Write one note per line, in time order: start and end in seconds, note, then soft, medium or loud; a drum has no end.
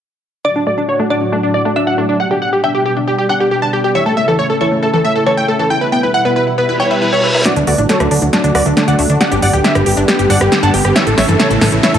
0.45 0.60 A2 medium
0.45 0.60 F#3 medium
0.45 0.60 D4 medium
0.45 0.48 D4 medium
0.45 0.60 F#4 medium
0.45 0.53 D5 medium
0.45 1.02 D5 loud
0.45 0.53 D5 medium
0.56 0.61 D4 medium
0.56 0.64 D4 medium
0.67 0.82 A2 medium
0.67 0.82 F#3 medium
0.67 0.71 A3 medium
0.67 0.82 D4 medium
0.67 0.82 F#4 medium
0.67 0.75 D5 medium
0.78 0.81 D4 medium
0.78 0.86 D4 medium
0.88 1.04 A2 medium
0.88 1.04 F#3 medium
0.88 1.04 D4 medium
0.88 0.93 D4 medium
0.88 1.04 F#4 medium
0.88 0.97 C#5 medium
0.99 1.04 A3 loud
0.99 1.08 D4 medium
1.10 1.26 A2 medium
1.10 1.26 F#3 medium
1.10 1.13 D4 medium
1.10 1.19 D4 medium
1.10 1.26 D4 medium
1.10 1.19 D4 medium
1.10 1.26 F#4 medium
1.10 1.67 D5 medium
1.21 1.26 D4 medium
1.32 1.40 A2 medium
1.32 1.40 F#3 medium
1.32 1.37 A3 loud
1.32 1.41 D4 medium
1.32 1.40 D4 medium
1.32 1.41 D4 medium
1.32 1.40 F#4 medium
1.43 1.59 A2 medium
1.43 1.59 F#3 medium
1.43 1.52 D4 medium
1.43 1.59 D4 medium
1.43 1.52 D4 medium
1.43 1.46 D4 medium
1.43 1.59 F#4 medium
1.54 1.59 D4 medium
1.54 1.62 D5 medium
1.65 1.80 A2 medium
1.65 1.80 F#3 medium
1.65 1.70 A3 loud
1.65 1.80 D4 medium
1.65 1.73 D4 medium
1.65 1.80 F#4 medium
1.76 1.84 D4 medium
1.76 1.79 D4 medium
1.76 2.55 E5 medium
1.87 2.02 A2 medium
1.87 2.02 F#3 medium
1.87 2.02 D4 medium
1.87 1.92 D4 medium
1.87 2.02 F#4 medium
1.87 1.95 F#5 medium
1.98 2.03 A3 medium
1.98 2.06 D4 medium
2.09 2.17 A2 medium
2.09 2.16 F#3 medium
2.09 2.17 D4 medium
2.09 2.12 D4 medium
2.09 2.17 D4 medium
2.09 2.17 F#4 medium
2.20 2.35 B2 medium
2.20 2.35 G3 medium
2.20 2.35 D4 medium
2.20 2.25 G4 medium
2.20 2.35 G4 medium
2.20 2.28 F#5 medium
2.31 2.36 D4 medium
2.31 2.39 G4 medium
2.42 2.57 B2 medium
2.42 2.57 G3 medium
2.42 2.57 D4 medium
2.42 2.45 G4 medium
2.42 2.57 G4 medium
2.42 2.50 F#5 medium
2.53 2.61 G4 medium
2.53 2.58 G4 medium
2.64 2.79 B2 medium
2.64 2.79 G3 medium
2.64 2.79 D4 medium
2.64 2.69 D4 medium
2.64 2.79 G4 medium
2.64 2.72 E5 medium
2.64 3.21 G5 medium
2.75 2.83 G4 medium
2.75 2.78 G4 medium
2.85 3.01 B2 medium
2.85 3.01 G3 medium
2.85 3.01 D4 medium
2.85 2.94 G4 medium
2.85 2.91 G4 medium
2.85 3.01 G4 medium
2.97 3.02 D4 medium
3.07 3.15 B2 medium
3.07 3.15 G3 medium
3.07 3.15 D4 medium
3.07 3.16 G4 medium
3.07 3.15 G4 medium
3.07 3.11 G4 medium
3.18 3.34 B2 medium
3.18 3.34 G3 medium
3.18 3.34 D4 medium
3.18 3.27 G4 medium
3.18 3.34 G4 medium
3.18 3.23 G4 medium
3.29 3.34 D4 medium
3.29 3.38 F#5 medium
3.29 3.86 G5 medium
3.40 3.56 B2 medium
3.40 3.56 G3 medium
3.40 3.56 D4 medium
3.40 3.49 G4 medium
3.40 3.43 G4 medium
3.40 3.56 G4 medium
3.51 3.60 G4 medium
3.51 3.56 G4 medium
3.62 3.78 B2 medium
3.62 3.78 G3 medium
3.62 3.67 D4 loud
3.62 3.78 D4 medium
3.62 3.78 G4 medium
3.62 3.70 A5 medium
3.73 3.81 G4 medium
3.73 3.76 G4 medium
3.84 3.92 B2 medium
3.84 3.92 G3 medium
3.84 3.92 D4 medium
3.84 3.92 G4 medium
3.84 3.89 G4 medium
3.84 3.92 G4 medium
3.95 4.11 C#3 medium
3.95 4.00 E3 medium
3.95 4.11 A3 medium
3.95 4.11 E4 medium
3.95 4.11 A4 medium
3.95 4.52 C#5 medium
3.95 4.03 E5 medium
4.06 4.09 A3 medium
4.06 4.14 A4 medium
4.17 4.32 C#3 medium
4.17 4.22 A3 medium
4.17 4.32 A3 medium
4.17 4.32 E4 medium
4.17 4.32 A4 medium
4.17 4.25 E5 medium
4.28 4.33 E3 loud
4.28 4.36 A4 medium
4.39 4.54 C#3 medium
4.39 4.42 A3 medium
4.39 4.54 A3 medium
4.39 4.54 E4 medium
4.39 4.54 A4 medium
4.39 4.47 C#5 medium
4.50 4.55 A3 medium
4.50 4.58 A4 medium
4.61 4.76 C#3 medium
4.61 4.66 E3 loud
4.61 4.76 A3 medium
4.61 4.76 E4 medium
4.61 4.69 A4 medium
4.61 4.76 A4 medium
4.61 5.18 C#5 medium
4.72 4.75 A3 medium
4.83 4.90 C#3 medium
4.83 4.90 A3 medium
4.83 4.88 A3 medium
4.83 4.90 E4 medium
4.83 4.91 A4 medium
4.83 4.90 A4 medium
4.93 5.09 C#3 medium
4.93 4.99 E3 loud
4.93 5.09 A3 medium
4.93 5.09 E4 medium
4.93 5.09 A4 medium
4.93 5.02 A4 medium
5.05 5.08 A3 medium
5.05 5.13 E5 medium
5.15 5.31 C#3 medium
5.15 5.31 A3 medium
5.15 5.20 A3 medium
5.15 5.31 E4 medium
5.15 5.31 A4 medium
5.15 5.24 A4 medium
5.26 5.31 E3 loud
5.26 5.35 A4 medium
5.26 6.05 C#5 medium
5.37 5.53 C#3 medium
5.37 5.53 A3 medium
5.37 5.40 A3 medium
5.37 5.53 E4 medium
5.37 5.53 A4 medium
5.37 5.46 G5 medium
5.48 5.53 A3 medium
5.48 5.57 A4 medium
5.59 5.67 C#3 medium
5.59 5.64 E3 medium
5.59 5.67 A3 medium
5.59 5.67 E4 medium
5.59 5.67 A4 medium
5.59 5.68 A4 medium
5.70 5.85 B2 medium
5.70 5.85 G3 medium
5.70 5.85 E4 medium
5.70 5.73 E4 medium
5.70 5.86 B4 medium
5.70 5.79 G5 medium
5.81 5.86 E4 medium
5.81 5.89 B4 medium
5.81 5.90 B4 medium
5.92 6.07 B2 medium
5.92 6.07 G3 medium
5.92 5.97 B3 loud
5.92 6.07 E4 medium
5.92 6.07 B4 medium
5.92 6.00 G5 medium
6.03 6.06 E4 medium
6.03 6.11 B4 medium
6.14 6.29 B2 medium
6.14 6.29 G3 medium
6.14 6.29 E4 medium
6.14 6.19 E4 medium
6.14 6.29 B4 medium
6.14 6.71 F#5 medium
6.14 6.22 F#5 medium
6.25 6.30 B3 loud
6.25 6.33 B4 medium
6.36 6.51 B2 medium
6.36 6.51 G3 medium
6.36 6.51 E4 medium
6.36 6.39 E4 medium
6.36 6.51 B4 medium
6.36 6.44 B4 medium
6.47 6.52 E4 medium
6.58 6.65 B2 medium
6.58 6.65 G3 medium
6.58 6.63 B3 loud
6.58 6.65 E4 medium
6.58 6.65 B4 medium
6.58 6.66 B4 medium
6.58 reverse cymbal medium
6.68 6.84 B2 medium
6.68 6.84 G3 medium
6.68 6.84 E4 medium
6.68 6.72 E4 medium
6.68 6.84 B4 medium
6.68 6.77 B4 medium
6.80 6.85 E4 medium
6.80 6.88 C#5 medium
6.80 7.37 G5 medium
6.90 7.06 B2 medium
6.90 7.06 G3 medium
6.90 7.06 E4 medium
6.90 7.06 B4 medium
6.90 6.99 B4 medium
6.90 6.94 E5 loud
7.02 7.09 E4 medium
7.02 7.10 B4 medium
7.12 7.28 B2 medium
7.12 7.28 G3 medium
7.12 7.28 E4 medium
7.12 7.28 B4 medium
7.12 7.21 C#5 medium
7.12 7.18 E5 medium
7.24 7.32 B4 medium
7.24 7.28 E5 medium
7.34 7.42 B2 medium
7.34 7.42 G3 medium
7.34 7.42 E4 medium
7.34 7.42 B4 medium
7.34 7.43 B4 medium
7.34 7.39 E5 medium
7.45 7.61 D3 medium
7.45 7.61 F#3 medium
7.45 7.61 A3 medium
7.45 7.48 D4 medium
7.45 7.54 F#4 medium
7.45 7.61 F#4 medium
7.45 7.54 D5 medium
7.45 snare soft
7.45 closed hi-hat medium
7.45 riser medium
7.56 7.64 D2 medium
7.56 7.65 D4 medium
7.56 7.61 D4 medium
7.56 closed hi-hat soft
7.67 7.75 D2 medium
7.67 7.83 D3 medium
7.67 7.83 F#3 medium
7.67 7.83 A3 medium
7.67 7.72 A3 loud
7.67 7.83 F#4 medium
7.67 7.76 F#4 medium
7.67 7.76 D5 medium
7.67 open hi-hat loud
7.78 7.86 A1 medium
7.78 7.87 D4 medium
7.78 7.81 D4 medium
7.78 7.87 D4 medium
7.78 closed hi-hat soft
7.89 8.05 D3 medium
7.89 8.05 F#3 medium
7.89 8.05 A3 medium
7.89 7.94 D4 medium
7.89 8.04 F#4 medium
7.89 7.98 A4 medium
7.89 7.98 C#5 medium
7.89 snare soft
7.89 closed hi-hat medium
8.00 8.08 D2 medium
8.00 8.05 A3 loud
8.00 8.09 D4 medium
8.00 cross-stick medium
8.00 closed hi-hat soft
8.11 8.19 D2 loud
8.11 8.26 D3 medium
8.11 8.26 F#3 medium
8.11 8.26 A3 medium
8.11 8.19 D4 medium
8.11 8.14 D4 medium
8.11 8.20 D4 medium
8.11 8.26 F#4 medium
8.11 open hi-hat medium
8.22 8.30 D2 medium
8.22 8.27 D4 medium
8.22 closed hi-hat soft
8.33 8.41 D3 medium
8.33 8.41 F#3 medium
8.33 8.41 A3 medium
8.33 8.38 A3 medium
8.33 8.41 D4 medium
8.33 8.41 F#4 medium
8.33 snare medium
8.33 closed hi-hat medium
8.44 8.51 D2 medium
8.44 8.59 D3 medium
8.44 8.59 F#3 medium
8.44 8.59 A3 medium
8.44 8.47 D4 medium
8.44 8.52 D4 medium
8.44 8.59 F#4 medium
8.44 closed hi-hat soft
8.55 8.62 D2 medium
8.55 8.60 D4 medium
8.55 8.63 F#4 medium
8.55 8.63 D5 medium
8.55 cross-stick medium
8.55 open hi-hat loud
8.66 8.73 D2 medium
8.66 8.81 D3 medium
8.66 8.81 F#3 medium
8.66 8.81 A3 medium
8.66 8.71 A3 loud
8.66 8.74 D4 medium
8.66 8.81 F#4 medium
8.66 closed hi-hat soft
8.77 8.85 D4 medium
8.77 8.80 D4 medium
8.77 8.85 D4 medium
8.77 snare medium
8.77 closed hi-hat medium
8.88 8.95 D2 medium
8.88 9.03 D3 medium
8.88 9.03 F#3 medium
8.88 9.03 A3 medium
8.88 8.93 D4 medium
8.88 9.03 F#4 medium
8.88 8.96 D5 medium
8.88 8.96 F#5 medium
8.88 closed hi-hat soft
8.99 9.06 D2 loud
8.99 9.04 A3 loud
8.99 9.07 D4 medium
8.99 open hi-hat medium
9.10 9.17 D2 medium
9.10 9.17 D3 medium
9.10 9.17 F#3 medium
9.10 9.17 A3 medium
9.10 9.18 D4 medium
9.10 9.13 D4 medium
9.10 9.17 F#4 medium
9.10 closed hi-hat soft
9.20 9.36 D3 medium
9.20 9.36 G3 medium
9.20 9.36 B3 medium
9.20 9.36 G4 medium
9.20 9.26 G4 medium
9.20 9.29 D5 medium
9.20 9.29 F#5 loud
9.20 snare medium
9.20 closed hi-hat medium
9.31 9.39 G1 medium
9.31 9.36 D4 loud
9.31 9.40 G4 medium
9.31 closed hi-hat soft
9.42 9.50 G1 loud
9.42 9.58 D3 medium
9.42 9.58 G3 medium
9.42 9.58 B3 medium
9.42 9.58 G4 medium
9.42 9.46 G4 medium
9.42 9.51 D5 medium
9.42 9.51 F#5 medium
9.42 open hi-hat loud
9.53 9.61 D1 medium
9.53 9.62 G4 medium
9.53 9.58 G4 medium
9.53 closed hi-hat soft
9.64 9.80 D3 medium
9.64 9.80 G3 medium
9.64 9.80 B3 medium
9.64 9.69 D4 loud
9.64 9.73 G4 medium
9.64 9.80 G4 medium
9.64 9.73 E5 medium
9.64 snare medium
9.64 closed hi-hat medium
9.75 9.83 G1 medium
9.75 9.84 G4 medium
9.75 9.78 G4 medium
9.75 9.84 G4 medium
9.75 cross-stick medium
9.75 closed hi-hat soft
9.86 9.94 G1 loud
9.86 10.02 D3 medium
9.86 10.02 G3 medium
9.86 10.02 B3 medium
9.86 9.94 G4 medium
9.86 10.02 G4 medium
9.86 9.91 G4 medium
9.86 9.95 G4 medium
9.86 open hi-hat medium
9.97 10.05 G1 medium
9.97 10.02 D4 loud
9.97 closed hi-hat soft
10.08 10.16 D3 medium
10.08 10.16 G3 medium
10.08 10.16 B3 medium
10.08 10.16 G4 medium
10.08 10.11 G4 medium
10.08 10.16 G4 medium
10.08 10.17 G4 medium
10.08 snare medium
10.08 closed hi-hat medium
10.19 10.27 G1 medium
10.19 10.35 D3 medium
10.19 10.35 G3 medium
10.19 10.35 B3 medium
10.19 10.27 G4 medium
10.19 10.24 G4 medium
10.19 10.27 G4 medium
10.19 10.35 G4 medium
10.19 closed hi-hat soft
10.30 10.38 G1 medium
10.30 10.35 D4 loud
10.30 10.38 D5 medium
10.30 10.38 F#5 medium
10.30 open hi-hat loud
10.41 10.48 G1 medium
10.41 10.56 D3 medium
10.41 10.56 G3 medium
10.41 10.56 B3 medium
10.41 10.49 G4 medium
10.41 10.44 G4 medium
10.41 10.49 G4 medium
10.41 10.56 G4 medium
10.41 cross-stick medium
10.41 closed hi-hat soft
10.52 10.60 G4 medium
10.52 10.57 G4 medium
10.52 snare medium
10.52 closed hi-hat medium
10.63 10.70 G1 medium
10.63 10.78 D3 medium
10.63 10.78 G3 medium
10.63 10.78 B3 medium
10.63 10.68 D4 loud
10.63 10.78 G4 medium
10.63 10.71 F#5 medium
10.63 10.71 A5 medium
10.63 closed hi-hat soft
10.74 10.81 G1 loud
10.74 10.82 G4 medium
10.74 10.77 G4 medium
10.74 open hi-hat medium
10.85 10.92 G1 medium
10.85 10.93 D3 medium
10.85 10.93 G3 medium
10.85 10.92 B3 medium
10.85 10.93 G4 medium
10.85 10.90 G4 medium
10.85 10.92 G4 medium
10.85 cross-stick medium
10.85 closed hi-hat soft
10.96 11.11 C#3 medium
10.96 11.01 E3 medium
10.96 11.11 E3 medium
10.96 11.11 A3 medium
10.96 11.11 E4 medium
10.96 11.04 C#5 medium
10.96 11.04 E5 medium
10.96 snare medium
10.96 closed hi-hat medium
11.07 11.14 A1 medium
11.07 11.10 A3 medium
11.07 11.15 A4 medium
11.07 closed hi-hat soft
11.17 11.25 A1 loud
11.17 11.33 C#3 medium
11.17 11.33 E3 medium
11.17 11.33 A3 medium
11.17 11.23 A3 medium
11.17 11.33 E4 medium
11.17 11.26 C#5 medium
11.17 11.26 E5 medium
11.17 snare medium
11.17 open hi-hat loud
11.28 11.36 G1 medium
11.28 11.34 E3 loud
11.28 11.37 A4 medium
11.28 closed hi-hat soft
11.39 11.55 C#3 medium
11.39 11.55 E3 medium
11.39 11.55 A3 medium
11.39 11.43 A3 medium
11.39 11.55 E4 medium
11.39 11.48 A4 medium
11.39 11.48 C#5 medium
11.39 snare medium
11.39 closed hi-hat medium
11.50 11.58 A1 medium
11.50 11.55 A3 medium
11.50 11.59 A4 medium
11.50 closed hi-hat soft
11.61 11.69 A1 loud
11.61 11.77 C#3 medium
11.61 11.77 E3 medium
11.61 11.66 E3 loud
11.61 11.77 A3 medium
11.61 11.77 E4 medium
11.61 11.70 A4 medium
11.61 snare medium
11.61 open hi-hat medium
11.72 11.80 A1 medium
11.72 11.75 A3 medium
11.72 closed hi-hat soft
11.83 11.91 C#3 medium
11.83 11.88 E3 medium
11.83 11.91 E3 medium
11.83 11.91 A3 medium
11.83 11.91 E4 medium
11.83 11.92 C#5 medium
11.83 11.92 E5 medium
11.83 snare medium
11.83 closed hi-hat medium
11.94 11.98 A1 medium
11.94 11.98 C#3 medium
11.94 11.98 E3 medium
11.94 11.98 A3 medium
11.94 11.97 A3 medium
11.94 11.98 E4 medium
11.94 11.98 A4 medium
11.94 closed hi-hat soft